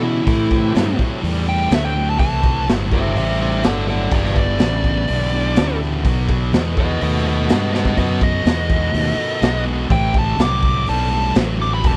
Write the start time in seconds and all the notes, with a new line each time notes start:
Already playing: B2 B3 D4 E4 G4
0.03 E2 C#3 E4
0.26 A2 E3 A3 C4 E4 G4, kick, open hi-hat
0.50 A2 E3, kick
0.75 G2 A2 F#3, snare, open hi-hat
0.99 A2 F#3, muted fingered electric bass stroke, kick
1.22 E2 A2 G3, open hi-hat
1.47 A2 G3 G5
1.71 D2 A2 F#3 E5, snare, open hi-hat
1.85 G5
1.96 A2 F#3
2.10 A5
2.19 C2 A2 E3 A5, kick, open hi-hat
2.43 A2 E3, kick
2.66 G1 A2 F#3, snare, open hi-hat
2.91 A2 F#3 C5 E5, kick
3.14 A1 A2 G3 C5 E5, open hi-hat
3.38 A2 G3 C5 E5
3.62 G1 A2 F#3 A4 D5, snare, open hi-hat
3.87 A2 F#3 A4 D5, snare
4.11 G1 E2 B2 B3 D4 E4 G4, kick, open hi-hat
4.15 B4 D5
4.25 snare
4.35 E2 B2, kick
4.40 D5
4.58 A1 E2 C#3, snare, open hi-hat
4.83 E2 C#3, kick
5.07 B1 E2 D3, open hi-hat
5.33 E2 D3
5.56 D2 E2 C#3, snare, open hi-hat
5.81 E2 C#3, snare
6.05 B1 B2 F#3 B3 D#4 F#4 A4, kick, open hi-hat
6.28 B2 F#3, kick
6.53 E2 B2 G#3, snare, open hi-hat
6.77 B2 G#3 B4 D#5, kick
7.01 D#2 B2 A3 B4 D#5, open hi-hat
7.25 B2 A3 B4 D#5
7.49 G2 B2 G#3 B4 D#5, snare, open hi-hat
7.73 B2 G#3 B4 D#5, snare
7.85 kick
7.97 F#2 B2 F#3 B4 D#5, kick, open hi-hat
8.21 B2 F#3 D#5, kick
8.45 E2 B2 G#3, snare, open hi-hat
8.69 B2 G#3, kick
8.93 D#2 B2 A3, open hi-hat
9.17 B2 A3, muted fingered electric bass stroke
9.42 B1 B2 G#3, snare, open hi-hat
9.65 B2 G#3
9.90 A1 A2 E3 C4 E4 G4 A4 G5, kick, open hi-hat
10.14 A2 E3, kick
10.19 A5
10.37 C2 A2 F#3, snare, open hi-hat
10.41 D6
10.61 A2 F#3, kick
10.86 B1 A2 G3 A5, open hi-hat
11.11 A2 G3
11.35 A1 A2 F#3, snare, open hi-hat
11.59 A2 F#3 D6, snare
11.74 B5
11.83 E1 E2 B2 D4 E4 G4 B4 A5, kick, open hi-hat